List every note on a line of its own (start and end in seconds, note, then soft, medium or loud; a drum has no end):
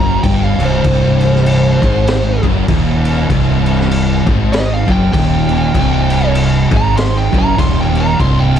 0.00 0.22 F#1 medium
0.00 0.23 F#2 loud
0.00 0.22 A#5 loud
0.23 0.57 G1 loud
0.23 0.58 G2 loud
0.23 0.43 G5 medium
0.23 kick loud
0.23 crash medium
0.44 0.64 F5 medium
0.58 0.82 C1 loud
0.58 0.83 C2 loud
0.58 crash medium
0.65 2.44 C5 medium
0.84 1.78 C1 loud
0.84 1.80 C2 loud
0.84 kick loud
0.84 crash medium
1.20 crash medium
1.35 snare soft
1.46 crash medium
1.81 2.39 G#1 loud
1.81 2.42 G#2 loud
1.81 kick loud
1.81 crash medium
2.07 snare loud
2.07 crash medium
2.43 2.67 F#1 loud
2.43 2.68 F#2 loud
2.43 kick loud
2.43 crash medium
2.68 3.26 D#1 loud
2.68 3.29 D#2 loud
2.68 kick loud
2.68 crash medium
3.05 crash medium
3.30 4.23 C1 loud
3.30 4.26 C2 loud
3.30 kick loud
3.30 crash medium
3.66 crash medium
3.80 snare soft
3.91 crash medium
4.26 4.84 G#1 loud
4.26 4.86 G#2 loud
4.26 kick loud
4.26 crash medium
4.53 4.72 D#5 loud
4.53 snare loud
4.53 crash medium
4.74 4.91 F5 medium
4.88 5.11 F#1 medium
4.88 5.12 F#2 loud
4.88 kick loud
4.88 crash medium
4.92 5.12 G5 medium
5.13 5.70 D#1 loud
5.13 5.73 D#2 loud
5.13 6.32 G5 loud
5.13 kick loud
5.13 crash medium
5.49 crash medium
5.74 6.67 C1 loud
5.74 6.70 C2 loud
5.74 kick medium
5.74 crash medium
6.10 crash medium
6.35 crash medium
6.71 7.28 G#1 loud
6.71 7.31 G#2 loud
6.71 kick loud
6.71 crash medium
6.77 6.96 A#5 loud
6.97 7.17 C6 medium
6.97 snare loud
6.97 crash medium
7.17 7.37 G5 loud
7.33 7.56 F#1 medium
7.33 7.58 F#2 loud
7.33 kick loud
7.33 crash medium
7.38 7.58 A#5 loud
7.58 8.15 D#1 loud
7.58 8.18 D#2 loud
7.58 7.79 C6 loud
7.58 kick loud
7.58 crash loud
7.81 7.99 G5 medium
7.95 crash medium
8.01 8.19 A#5 loud
8.19 8.60 C1 medium
8.19 8.60 C2 loud
8.19 8.40 C6 loud
8.19 kick loud
8.19 crash medium
8.40 8.59 G5 medium
8.56 crash medium